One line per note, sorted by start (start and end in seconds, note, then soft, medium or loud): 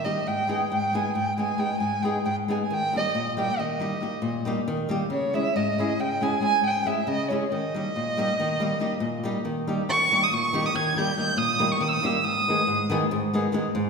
0.00 0.15 D#3 medium
0.04 0.18 G3 medium
0.04 0.18 A#3 medium
0.04 0.19 D#4 medium
0.04 0.19 G4 medium
0.04 0.29 D#5 medium
0.27 0.60 G#2 medium
0.27 0.72 G5 medium
0.47 0.62 G#3 medium
0.47 0.63 B3 medium
0.47 0.63 D#4 medium
0.47 0.63 G#4 medium
0.72 1.05 G#2 medium
0.72 0.97 G5 medium
0.93 1.07 G#3 medium
0.93 1.08 B3 medium
0.93 1.08 D#4 medium
0.93 1.08 G#4 medium
0.93 1.15 G#5 medium
1.15 1.48 G#2 medium
1.15 1.37 G5 medium
1.38 1.51 G#3 medium
1.38 1.52 B3 soft
1.38 1.52 D#4 medium
1.38 1.52 G#4 medium
1.38 1.61 G#5 medium
1.58 1.72 G#3 soft
1.58 1.72 B3 soft
1.58 1.72 D#4 soft
1.58 1.73 G#4 soft
1.58 1.80 G5 medium
1.80 2.14 G#2 medium
1.80 2.04 G#5 medium
2.02 2.17 G#3 medium
2.02 2.17 B3 medium
2.02 2.17 D#4 medium
2.02 2.18 G#4 medium
2.02 2.24 G5 medium
2.25 2.59 G#2 medium
2.25 2.36 G5 loud
2.48 2.62 G#3 medium
2.48 2.62 B3 soft
2.48 2.62 D#4 medium
2.48 2.62 G#4 medium
2.48 2.57 G#5 medium
2.65 2.75 G#5 medium
2.70 3.03 D#3 medium
2.70 2.95 G5 loud
2.93 3.06 G3 medium
2.93 3.07 A#3 medium
2.93 3.07 D#4 medium
2.93 3.08 G4 medium
2.93 3.36 D#5 loud
3.15 3.48 A#2 medium
3.37 3.50 G3 medium
3.37 3.51 A#3 medium
3.37 3.51 D#4 soft
3.37 3.51 G4 medium
3.37 3.61 G5 loud
3.59 3.91 D#3 medium
3.59 4.46 D#5 medium
3.80 3.93 G3 medium
3.80 3.94 A#3 soft
3.80 3.94 D#4 soft
3.80 3.94 G4 medium
4.01 4.14 G3 soft
4.01 4.14 A#3 soft
4.01 4.15 D#4 soft
4.01 4.15 G4 medium
4.22 4.55 A#2 medium
4.45 4.59 G3 medium
4.45 4.59 A#3 medium
4.45 4.60 D#4 medium
4.45 4.60 G4 medium
4.68 5.00 D#3 medium
4.89 5.03 G3 medium
4.89 5.03 A#3 medium
4.89 5.03 D#4 medium
4.89 5.04 G4 medium
5.10 5.44 C#3 medium
5.10 5.36 C#5 loud
5.33 5.47 G#3 medium
5.33 5.47 C#4 medium
5.33 5.48 E4 soft
5.33 5.48 G#4 medium
5.33 5.58 E5 loud
5.56 5.89 G#2 medium
5.56 6.02 D#5 medium
5.78 5.92 G#3 medium
5.78 5.92 C#4 medium
5.78 5.92 E4 medium
5.78 5.93 G#4 medium
6.00 6.32 C#3 medium
6.00 6.25 G5 loud
6.21 6.34 G#3 medium
6.21 6.35 C#4 medium
6.21 6.35 E4 medium
6.21 6.35 G#4 medium
6.21 6.43 G#5 loud
6.41 6.54 G#3 soft
6.41 6.55 C#4 soft
6.41 6.55 E4 soft
6.41 6.55 G#4 medium
6.45 6.62 G#5 loud
6.61 6.95 G#2 medium
6.66 6.88 G5 loud
6.85 6.99 G#3 medium
6.85 6.99 C#4 medium
6.85 7.00 E4 medium
6.85 6.99 G#4 medium
6.85 7.09 E5 medium
7.07 7.40 C#3 medium
7.07 7.30 D#5 loud
7.28 7.43 G#3 medium
7.28 7.43 C#4 medium
7.28 7.44 E4 medium
7.28 7.44 G#4 medium
7.28 7.50 C#5 medium
7.52 7.84 D#3 medium
7.52 9.42 D#5 loud
7.74 7.87 G3 medium
7.74 7.88 A#3 soft
7.74 7.88 D#4 medium
7.74 7.88 G4 medium
7.96 8.28 A#2 medium
8.17 8.31 G3 medium
8.17 8.31 A#3 medium
8.17 8.32 D#4 medium
8.17 8.32 G4 medium
8.40 8.71 D#3 medium
8.60 8.73 G3 medium
8.60 8.74 A#3 medium
8.60 8.74 D#4 medium
8.60 8.74 G4 medium
8.80 8.93 G3 medium
8.80 8.94 A#3 medium
8.80 8.94 D#4 medium
8.80 8.94 G4 medium
9.00 9.34 A#2 medium
9.23 9.37 G3 medium
9.23 9.38 A#3 medium
9.23 9.38 D#4 medium
9.23 9.38 G4 medium
9.45 9.78 D#3 medium
9.67 9.81 G3 medium
9.67 9.81 A#3 medium
9.67 9.81 D#4 medium
9.67 9.81 G4 medium
9.89 10.10 D#3 medium
9.89 10.25 C#6 loud
10.11 10.24 D#3 medium
10.11 10.25 G3 medium
10.11 10.25 A#3 medium
10.11 10.25 D#4 medium
10.11 10.25 G4 medium
10.23 10.35 D#6 medium
10.32 10.65 A#2 medium
10.32 10.67 C#6 loud
10.53 10.67 D#3 medium
10.53 10.68 G3 medium
10.53 10.68 A#3 medium
10.53 10.68 D#4 medium
10.53 10.68 G4 medium
10.66 10.77 D#6 loud
10.75 10.95 D#3 medium
10.75 10.99 G#6 medium
10.96 11.10 D#3 medium
10.96 11.10 G3 medium
10.96 11.10 A#3 medium
10.96 11.10 D#4 medium
10.96 11.11 G4 medium
10.96 11.18 G6 loud
11.17 11.30 D#3 medium
11.17 11.30 G3 soft
11.17 11.31 A#3 soft
11.17 11.31 D#4 medium
11.17 11.31 G4 medium
11.17 11.39 G6 loud
11.37 11.70 A#2 medium
11.37 11.73 D#6 loud
11.59 11.73 D#3 medium
11.59 11.73 G3 medium
11.59 11.73 A#3 medium
11.59 11.73 D#4 medium
11.59 11.74 G4 medium
11.72 11.84 C#6 medium
11.81 12.02 D#3 medium
11.81 11.90 D#6 loud
11.88 11.95 E6 medium
11.93 12.07 D#6 loud
12.03 12.17 D#3 medium
12.03 12.17 G3 medium
12.03 12.17 A#3 medium
12.03 12.17 D#4 medium
12.03 12.17 G4 medium
12.03 12.26 E6 medium
12.24 12.57 G#2 medium
12.24 12.90 D#6 loud
12.48 12.61 D#3 medium
12.48 12.61 G#3 medium
12.48 12.61 B3 medium
12.48 12.62 D#4 medium
12.48 12.62 G#4 medium
12.67 13.00 G#2 medium
12.90 13.03 D#3 loud
12.90 13.04 G#3 medium
12.90 13.04 B3 medium
12.90 13.04 D#4 medium
12.90 13.04 G#4 medium
13.11 13.43 G#2 medium
13.33 13.46 D#3 medium
13.33 13.46 G#3 medium
13.33 13.46 B3 medium
13.33 13.46 D#4 medium
13.33 13.47 G#4 medium
13.52 13.65 D#3 medium
13.52 13.66 G#3 medium
13.52 13.66 B3 medium
13.52 13.66 D#4 medium
13.52 13.66 G#4 medium
13.75 13.90 G#2 medium